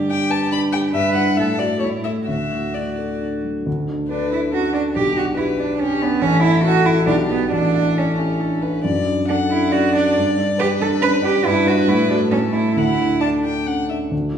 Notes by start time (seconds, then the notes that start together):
Already playing: G2 D3 G4
0.08 D4 G5
0.30 B4 A5
0.51 D4 B5
0.72 G3 G5
0.93 G2 B4 E5
1.15 E4 B4 F#5
1.37 A2 A4 E5
1.59 F#4 A4 D5
1.80 A2 E4 C#5
2.04 E4 A4 E5
2.27 D2 F#4 E5
2.51 A2
2.74 D4 D5
2.98 A4
3.21 D4
3.43 F#3
3.66 D2
3.89 D4
4.09 D4 A4 B4
4.32 D4 E4
4.52 C#4 F#4 A4
4.74 D4
4.95 B1 G4
5.16 D4 F#4
5.37 E4 G4 B4
5.59 D4
5.79 C#4 G4
6.02 B3 D4
6.21 A1 C#4 A4
6.43 E4
6.64 F#4 A4
6.86 E4
7.07 B1 D4 G4
7.29 B3 G4
7.51 A1 D4 A4
7.74 E4
7.95 C#4 A4
8.18 E4 G4
8.39 D4 A4
8.62 E4 B4
8.84 F#2 D5
9.07 D4
9.29 D4 A4 F#5
9.50 D4 E4
9.72 C#4 F#4 D5
9.94 D4
10.16 G2
10.38 D4
10.58 G4 B4
10.80 D4 A4
11.01 C#4 B4
11.22 D4 G4
11.45 G2 E4 B4
11.67 E4 F#4 B4
11.88 A2 E4
12.10 D4 F#4 A4
12.31 A2 C#4 A4
12.53 E4 A4
12.76 D2 E4 F#5
12.99 D4
13.20 D4 A4 A5
13.44 D4 G5
13.66 C#4 F#5
13.89 D4 E5
14.11 D2
14.34 F4